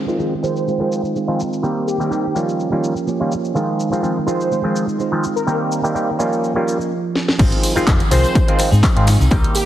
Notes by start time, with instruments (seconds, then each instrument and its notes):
Already playing: clean electric guitar D#3 G#3 C4 F4
0.08 clav D#3 F3 G#3 C4 F4, cabasa
0.19 clav D#3 F3 G#3 C4 F4, cabasa
0.43 clav D#3 F3 G#3 C4 F4, analog polysynth C5, cabasa
0.57 cabasa
0.67 clean electric guitar D#3 G#3 C4 F4, tambourine, cabasa
0.80 clav D#3 F3 G#3 C4 F4
0.92 cabasa
1.05 cabasa
1.15 clean electric guitar D#3 G#3 C4 F4, tambourine, cabasa
1.28 clav D#3 F3 G#3 C4 F4
1.40 cabasa
1.53 cabasa
1.63 clav D#3 G3 A#3 C4 G4, clean electric guitar D#3 A#3 C4 G4, cabasa
1.87 analog polysynth G4, tambourine, cabasa
1.99 clav D#3 G3 A#3 C4 G4, cabasa
2.11 clav D#3 G3 A#3 C4 G4, cabasa
2.24 tambourine
2.35 clav D#3 G3 A#3 C#4 F4, clean electric guitar F3 A#3 C#4 G4, cabasa
2.49 cabasa
2.59 tambourine, cabasa
2.72 clav D#3 G3 A#3 C#4 F4
2.83 tambourine, cabasa
2.96 tambourine, cabasa
3.06 clean electric guitar F3 A#3 C#4 G4, tambourine, cabasa
3.20 clav D#3 G3 A#3 C#4 F4
3.31 tambourine, cabasa
3.43 tambourine, cabasa
3.54 clean electric guitar D#3 G#3 C4 F4, clav D#3 F3 G#3 C4 F4, tambourine, cabasa
3.78 tambourine, cabasa
3.91 clav D#3 F3 G#3 C4 F4, tambourine, cabasa
4.02 clav D#3 F3 G#3 C4 F4, tambourine, cabasa
4.16 tambourine
4.27 clav D#3 F3 G#3 C4 F4, analog polysynth C5, tambourine, cabasa
4.39 tambourine, cabasa
4.50 clean electric guitar D#3 G#3 C4 F4, tambourine, cabasa
4.63 clav D#3 F3 G#3 C4 F4
4.75 tambourine, cabasa
4.89 tambourine, cabasa
4.98 clean electric guitar D#3 G#3 C4 F4, tambourine, cabasa
5.11 clav D#3 F3 G#3 C4 F4
5.23 tambourine, cabasa
5.36 analog polysynth A#4, tambourine, cabasa
5.47 clean electric guitar D#3 A#3 C4 G4, clav D#3 G3 A#3 C4 G4, analog polysynth A#4, tambourine, cabasa
5.71 tambourine, cabasa
5.83 clav D#3 G3 A#3 C4 G4, tambourine, cabasa
5.95 clav D#3 G3 A#3 C4 G4, tambourine, cabasa
6.08 tambourine
6.19 clav D#3 G3 A#3 C#4 F4, clean electric guitar F3 A#3 C#4 G4, tambourine, cabasa
6.32 tambourine, cabasa
6.44 tambourine, cabasa
6.55 clav D#3 G3 A#3 C#4 F4
6.67 tambourine, cabasa
6.80 tambourine, cabasa
7.15 snare
7.28 snare
7.39 fingered electric bass G#1, clav D#3 F3 G#3 C4 F4, clean electric guitar F3 C4 D#4 G#4, kick, closed hi-hat, tambourine, crash, cabasa
7.52 closed hi-hat
7.63 open hi-hat, tambourine, cabasa
7.75 clav D#3 F3 G#3 C4 F4, clean electric guitar C4 D#4 G#4, muted fingered electric bass stroke, tambourine, cabasa
7.86 fingered electric bass F1, clav D#3 F3 G#3, clean electric guitar F3, kick, clap, closed hi-hat, tambourine, cabasa
8.00 closed hi-hat, tambourine
8.10 fingered electric bass C2, clav D#3 F3 G#3 C4 F4, clean electric guitar F3 C4 D#4 G#4, analog polysynth C5, open hi-hat, tambourine, cabasa
8.24 closed hi-hat, tambourine, cabasa
8.35 kick, closed hi-hat, tambourine, cabasa
8.47 clav D#3 F3 G#3 C4 F4, clean electric guitar C4 D#4 G#4, closed hi-hat
8.59 finger snap, open hi-hat, tambourine, cabasa
8.71 fingered electric bass G#2, clean electric guitar C4 D#4 G#4, tambourine, cabasa
8.83 clean electric guitar F3 D#4, kick, clap, closed hi-hat, tambourine, cabasa
8.96 fingered electric bass G#2, clav D#3 F3 G#3 C4 F4, closed hi-hat
9.06 clean electric guitar F3 C4 D#4 G#4, finger snap, open hi-hat, tambourine, cabasa
9.19 fingered electric bass C2, clean electric guitar C4 D#4 G#4, tambourine, cabasa
9.31 fingered electric bass C2, clav D#3 G3 A#3 C4 G4, clean electric guitar A#3 D#4 G4, kick, closed hi-hat, tambourine, cabasa
9.44 closed hi-hat
9.55 analog polysynth G4, open hi-hat, tambourine, cabasa